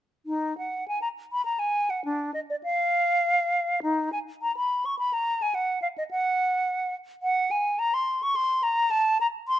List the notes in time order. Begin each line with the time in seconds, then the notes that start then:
0.26 D#4
0.58 F#5
0.88 G#5
1.02 A#5
1.32 B5
1.45 A#5
1.59 G#5
1.90 F#5
2.05 D4
2.34 D#5
2.50 D5
2.63 F5
3.83 D#4
4.12 G#5
4.42 A#5
4.56 B5
4.85 C#6
4.99 B5
5.13 A#5
5.42 G#5
5.54 F#5
5.82 F5
5.98 D#5
6.11 F#5
7.23 F#5
7.51 G#5
7.79 A#5
7.94 C6
8.23 C#6
8.35 C6
8.63 A#5
8.91 A5
9.21 A#5
9.48 C6